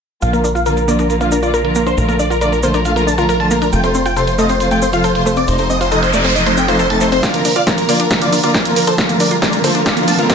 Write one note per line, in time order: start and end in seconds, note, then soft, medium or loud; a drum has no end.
0.22 1.95 A#1 medium
0.22 0.38 D3 medium
0.22 0.38 F3 medium
0.22 0.38 A#3 medium
0.22 0.38 F4 medium
0.22 0.30 F5 medium
0.22 closed hi-hat medium
0.22 shaker soft
0.33 0.38 A#3 medium
0.33 0.41 A#4 medium
0.33 closed hi-hat medium
0.33 shaker soft
0.44 0.49 D4 medium
0.44 0.52 A#4 medium
0.44 shaker medium
0.55 0.60 F4 medium
0.55 0.63 F5 medium
0.55 closed hi-hat medium
0.55 shaker soft
0.66 0.82 D3 medium
0.66 0.82 F3 medium
0.66 0.82 A#3 medium
0.66 0.82 F4 medium
0.66 0.74 A#4 medium
0.66 0.69 A#4 medium
0.66 closed hi-hat medium
0.66 shaker medium
0.77 0.85 A#4 medium
0.77 closed hi-hat medium
0.77 shaker soft
0.88 1.03 D3 medium
0.88 1.03 F3 medium
0.88 0.93 A#3 loud
0.88 1.03 A#3 medium
0.88 1.03 F4 medium
0.88 0.96 D5 medium
0.88 shaker medium
0.99 1.02 D4 medium
0.99 1.07 A#4 medium
0.99 closed hi-hat medium
0.99 shaker soft
1.10 1.17 D3 medium
1.10 1.17 F3 medium
1.10 1.17 A#3 medium
1.10 1.17 F4 medium
1.10 1.17 A#4 medium
1.10 closed hi-hat medium
1.10 shaker soft
1.21 1.36 D3 medium
1.21 1.36 F3 medium
1.21 1.36 A#3 medium
1.21 1.26 A#3 medium
1.21 1.36 F4 medium
1.21 1.28 F5 medium
1.21 closed hi-hat medium
1.21 shaker soft
1.32 1.37 D4 medium
1.32 1.39 A#4 medium
1.32 shaker medium
1.43 1.58 D3 medium
1.43 1.58 F3 medium
1.43 1.58 A#3 medium
1.43 1.58 F4 medium
1.43 1.48 F4 medium
1.43 1.50 D5 medium
1.43 closed hi-hat medium
1.43 shaker soft
1.54 1.61 A#4 medium
1.54 1.57 A#4 medium
1.54 closed hi-hat medium
1.54 shaker soft
1.65 1.80 D3 medium
1.65 1.80 F3 medium
1.65 1.80 A#3 medium
1.65 1.80 F4 medium
1.65 1.72 A#4 medium
1.65 closed hi-hat medium
1.75 1.80 A#3 loud
1.75 1.83 A#4 medium
1.75 shaker medium
1.86 1.89 D4 medium
1.86 1.94 C5 medium
1.86 closed hi-hat medium
1.86 shaker soft
1.97 3.71 A#1 medium
1.97 2.13 D3 medium
1.97 2.13 F3 medium
1.97 2.13 A3 medium
1.97 2.13 F4 medium
1.97 2.05 A#4 medium
1.97 closed hi-hat medium
1.97 shaker soft
2.08 2.13 A#3 medium
2.08 2.16 A#4 medium
2.08 closed hi-hat medium
2.08 shaker soft
2.19 2.24 D4 medium
2.19 2.27 D5 medium
2.19 shaker medium
2.30 2.35 F4 medium
2.30 2.38 A#4 medium
2.30 closed hi-hat medium
2.30 shaker soft
2.41 2.57 D3 medium
2.41 2.57 F3 medium
2.41 2.57 A3 medium
2.41 2.57 F4 medium
2.41 2.44 A#4 medium
2.41 2.49 D5 medium
2.41 closed hi-hat medium
2.41 shaker medium
2.52 2.60 A#4 medium
2.52 closed hi-hat medium
2.52 shaker soft
2.63 2.79 D3 medium
2.63 2.79 F3 medium
2.63 2.79 A3 medium
2.63 2.68 A#3 medium
2.63 2.79 F4 medium
2.63 2.71 C5 medium
2.63 shaker medium
2.74 2.77 D4 medium
2.74 2.82 A#4 medium
2.74 closed hi-hat medium
2.74 shaker soft
2.85 2.93 D3 medium
2.85 2.93 F3 medium
2.85 2.93 A3 medium
2.85 2.93 F4 medium
2.85 2.93 F5 medium
2.85 closed hi-hat medium
2.85 shaker soft
2.96 3.12 D3 medium
2.96 3.12 F3 medium
2.96 3.12 A3 medium
2.96 3.01 A#3 medium
2.96 3.12 F4 medium
2.96 3.04 A#4 medium
2.96 closed hi-hat medium
2.96 shaker soft
3.07 3.12 D4 medium
3.07 3.15 A5 medium
3.07 shaker medium
3.18 3.33 D3 medium
3.18 3.33 F3 medium
3.18 3.33 A3 medium
3.18 3.33 F4 medium
3.18 3.23 F4 medium
3.18 3.26 A#4 medium
3.18 closed hi-hat medium
3.18 shaker soft
3.29 3.32 A#4 medium
3.29 3.37 A#4 medium
3.29 closed hi-hat medium
3.29 shaker soft
3.40 3.55 D3 medium
3.40 3.55 F3 medium
3.40 3.55 A3 medium
3.40 3.55 F4 medium
3.40 3.47 A5 medium
3.40 closed hi-hat medium
3.51 3.56 A#3 loud
3.51 3.58 A#4 medium
3.51 shaker medium
3.62 3.65 D4 medium
3.62 3.69 A#4 medium
3.62 closed hi-hat medium
3.62 shaker soft
3.73 5.46 F1 medium
3.73 3.88 C3 medium
3.73 3.88 F3 medium
3.73 3.88 A3 medium
3.73 3.88 F4 medium
3.73 3.80 G5 medium
3.73 closed hi-hat medium
3.73 shaker soft
3.84 3.88 A3 medium
3.84 3.91 C5 medium
3.84 closed hi-hat medium
3.84 shaker soft
3.94 3.99 C4 medium
3.94 4.02 C5 medium
3.94 shaker medium
4.06 4.10 F4 medium
4.06 4.13 G5 medium
4.06 closed hi-hat medium
4.06 shaker soft
4.16 4.32 C3 medium
4.16 4.32 F3 medium
4.16 4.32 A3 medium
4.16 4.32 F4 medium
4.16 4.19 A4 medium
4.16 4.24 C5 medium
4.16 closed hi-hat medium
4.16 shaker medium
4.27 4.35 C5 medium
4.27 closed hi-hat medium
4.27 shaker soft
4.38 4.54 C3 medium
4.38 4.54 F3 medium
4.38 4.54 A3 medium
4.38 4.43 A3 loud
4.38 4.54 F4 medium
4.38 4.46 D#5 medium
4.38 shaker medium
4.49 4.52 C4 medium
4.49 4.57 C5 medium
4.49 closed hi-hat medium
4.49 shaker soft
4.60 4.68 C3 medium
4.60 4.68 F3 medium
4.60 4.68 A3 medium
4.60 4.68 F4 medium
4.60 4.68 C5 medium
4.60 closed hi-hat medium
4.60 shaker soft
4.71 4.86 C3 medium
4.71 4.86 F3 medium
4.71 4.86 A3 medium
4.71 4.76 A3 medium
4.71 4.86 F4 medium
4.71 4.79 G5 medium
4.71 closed hi-hat medium
4.71 shaker soft
4.82 4.87 C4 medium
4.82 4.90 C5 medium
4.82 shaker medium
4.93 5.08 C3 medium
4.93 5.08 F3 medium
4.93 5.08 A3 medium
4.93 5.08 F4 medium
4.93 4.98 F4 medium
4.93 5.01 F5 medium
4.93 closed hi-hat medium
4.93 shaker soft
5.04 5.07 A4 medium
5.04 5.12 C5 medium
5.04 closed hi-hat medium
5.04 shaker medium
5.15 5.30 C3 medium
5.15 5.30 F3 medium
5.15 5.30 A3 medium
5.15 5.30 F4 medium
5.15 5.23 C5 medium
5.15 closed hi-hat medium
5.26 5.31 A3 loud
5.26 5.34 C5 medium
5.26 shaker medium
5.37 5.40 C4 medium
5.37 5.45 D5 loud
5.37 closed hi-hat medium
5.37 shaker soft
5.47 7.21 F1 medium
5.47 5.63 C3 medium
5.47 5.63 F3 medium
5.47 5.63 A3 medium
5.47 5.63 D#4 medium
5.47 5.56 C5 medium
5.47 closed hi-hat medium
5.47 noise sweep medium
5.47 shaker medium
5.58 5.64 A3 medium
5.58 5.67 C5 medium
5.58 closed hi-hat medium
5.58 shaker soft
5.70 5.75 C4 medium
5.70 5.77 D#5 medium
5.70 shaker medium
5.81 5.85 F4 medium
5.81 5.88 C5 medium
5.81 closed hi-hat medium
5.81 shaker soft
5.91 6.07 C3 medium
5.91 6.07 F3 medium
5.91 6.07 A3 medium
5.91 6.07 D#4 medium
5.91 5.95 A4 medium
5.91 5.99 D#5 medium
5.91 closed hi-hat medium
5.91 shaker medium
6.03 6.10 C5 medium
6.03 closed hi-hat medium
6.03 shaker soft
6.13 6.29 C3 medium
6.13 6.29 F3 medium
6.13 6.29 A3 medium
6.13 6.18 A3 loud
6.13 6.29 D#4 medium
6.13 6.21 D5 medium
6.13 shaker loud
6.24 6.27 C4 medium
6.24 6.32 C5 medium
6.24 closed hi-hat medium
6.24 shaker soft
6.35 6.43 C3 medium
6.35 6.43 F3 medium
6.35 6.43 A3 medium
6.35 6.43 D#4 medium
6.35 6.43 D#5 medium
6.35 closed hi-hat medium
6.35 shaker medium
6.46 6.62 C3 medium
6.46 6.62 F3 medium
6.46 6.51 A3 medium
6.46 6.62 A3 medium
6.46 6.62 D#4 medium
6.46 6.54 C5 medium
6.46 closed hi-hat medium
6.46 shaker soft
6.57 6.62 C4 medium
6.57 6.65 G5 medium
6.57 shaker medium
6.68 6.84 C3 medium
6.68 6.84 F3 medium
6.68 6.84 A3 medium
6.68 6.84 D#4 medium
6.68 6.73 F4 medium
6.68 6.76 C5 medium
6.68 closed hi-hat medium
6.68 shaker soft
6.79 6.82 A4 medium
6.79 6.87 C5 medium
6.79 closed hi-hat medium
6.79 shaker medium
6.90 7.06 C3 medium
6.90 7.06 F3 medium
6.90 7.06 A3 medium
6.90 7.06 D#4 medium
6.90 6.98 A5 medium
6.90 closed hi-hat medium
7.00 7.06 A3 loud
7.00 7.09 C5 medium
7.00 shaker medium
7.12 7.15 C4 medium
7.12 7.20 C5 medium
7.12 closed hi-hat medium
7.12 shaker soft
7.23 7.38 D3 medium
7.23 7.38 F3 medium
7.23 7.38 A#3 medium
7.23 7.38 F4 medium
7.23 7.31 D5 medium
7.23 7.31 F5 medium
7.23 kick loud
7.23 snare soft
7.23 closed hi-hat medium
7.23 riser medium
7.23 shaker medium
7.34 7.39 A#3 medium
7.34 7.42 A#4 medium
7.34 closed hi-hat medium
7.34 shaker soft
7.45 7.50 D4 medium
7.45 7.53 A#4 medium
7.45 open hi-hat loud
7.45 shaker medium
7.56 7.61 F4 medium
7.56 7.63 D5 medium
7.56 7.63 F5 loud
7.56 closed hi-hat medium
7.56 shaker soft
7.67 7.82 D3 medium
7.67 7.82 F3 medium
7.67 7.82 A#3 medium
7.67 7.82 F4 medium
7.67 7.74 A#4 medium
7.67 7.70 A#4 medium
7.67 kick loud
7.67 snare soft
7.67 closed hi-hat medium
7.67 shaker soft
7.78 7.85 A#4 medium
7.78 closed hi-hat medium
7.78 shaker soft
7.89 8.04 D3 medium
7.89 8.04 F3 medium
7.89 7.94 A#3 loud
7.89 8.04 A#3 medium
7.89 8.04 F4 medium
7.89 7.96 A#4 medium
7.89 7.96 D5 medium
7.89 open hi-hat medium
7.89 shaker medium
8.00 8.03 D4 medium
8.00 8.07 A#4 medium
8.00 closed hi-hat medium
8.00 shaker soft
8.10 8.18 D3 medium
8.10 8.18 F3 medium
8.10 8.18 A#3 medium
8.10 8.18 F4 medium
8.10 8.18 A#4 medium
8.10 kick loud
8.10 snare soft
8.10 closed hi-hat medium
8.10 shaker soft
8.21 8.37 D3 medium
8.21 8.37 F3 medium
8.21 8.37 A#3 medium
8.21 8.26 A#3 medium
8.21 8.37 F4 medium
8.21 8.29 D5 medium
8.21 8.29 F5 medium
8.21 closed hi-hat medium
8.21 shaker soft
8.32 8.37 D4 medium
8.32 8.40 A#4 medium
8.32 open hi-hat loud
8.32 shaker medium
8.43 8.59 D3 medium
8.43 8.59 F3 medium
8.43 8.59 A#3 medium
8.43 8.48 F4 medium
8.43 8.59 F4 medium
8.43 8.51 A#4 medium
8.43 8.51 D5 medium
8.43 closed hi-hat medium
8.43 shaker soft
8.54 8.57 A#4 medium
8.54 8.62 A#4 medium
8.54 kick loud
8.54 snare soft
8.54 closed hi-hat medium
8.54 shaker soft
8.65 8.81 D3 medium
8.65 8.81 F3 medium
8.65 8.81 A#3 medium
8.65 8.81 F4 medium
8.65 8.73 A#4 medium
8.65 closed hi-hat medium
8.65 shaker soft
8.76 8.81 A#3 loud
8.76 8.84 A#4 medium
8.76 open hi-hat medium
8.76 shaker medium
8.87 8.90 D4 medium
8.87 8.95 A4 medium
8.87 8.95 C5 medium
8.87 closed hi-hat medium
8.87 shaker soft
8.98 9.13 D3 medium
8.98 9.14 F3 medium
8.98 9.14 A3 medium
8.98 9.13 F4 medium
8.98 9.06 A#4 medium
8.98 kick loud
8.98 snare medium
8.98 closed hi-hat medium
8.98 shaker medium
9.09 9.14 A#3 medium
9.09 9.17 A#4 medium
9.09 closed hi-hat medium
9.09 shaker soft
9.20 9.25 D4 medium
9.20 9.28 A#4 medium
9.20 9.28 D5 medium
9.20 open hi-hat loud
9.20 shaker loud
9.31 9.36 F4 medium
9.31 9.39 A#4 medium
9.31 closed hi-hat medium
9.31 shaker soft
9.42 9.57 D3 medium
9.42 9.57 F3 medium
9.42 9.57 A3 medium
9.42 9.57 F4 medium
9.42 9.45 A#4 medium
9.42 9.50 A#4 medium
9.42 9.50 D5 medium
9.42 kick loud
9.42 snare medium
9.42 closed hi-hat medium
9.42 shaker medium
9.52 9.61 A#4 medium
9.52 closed hi-hat medium
9.52 shaker soft
9.64 9.79 D3 medium
9.64 9.79 F3 medium
9.64 9.79 A3 medium
9.64 9.69 A#3 loud
9.64 9.79 F4 medium
9.64 9.72 A4 medium
9.64 9.72 C5 medium
9.64 open hi-hat medium
9.64 shaker medium
9.75 9.78 D4 medium
9.75 9.82 A#4 medium
9.75 closed hi-hat medium
9.75 shaker soft
9.86 9.94 D3 medium
9.86 9.94 F3 medium
9.86 9.94 A3 medium
9.86 9.94 F4 medium
9.86 9.93 D5 medium
9.86 9.93 F5 medium
9.86 kick loud
9.86 snare medium
9.86 closed hi-hat medium
9.86 shaker soft
9.97 10.12 D3 medium
9.97 10.12 F3 medium
9.97 10.12 A3 medium
9.97 10.02 A#3 medium
9.97 10.12 F4 medium
9.97 10.04 A#4 medium
9.97 closed hi-hat medium
9.97 shaker soft
10.08 10.12 D4 medium
10.08 10.15 F5 medium
10.08 10.15 A5 medium
10.08 open hi-hat loud
10.08 shaker medium
10.18 10.34 D3 medium
10.18 10.34 F3 medium
10.18 10.34 A3 medium
10.18 10.23 F4 medium
10.18 10.34 F4 medium
10.18 10.26 A#4 medium
10.18 closed hi-hat medium
10.18 shaker soft
10.30 10.35 A#4 medium
10.30 10.33 A#4 medium
10.30 kick loud
10.30 snare medium
10.30 closed hi-hat medium
10.30 shaker medium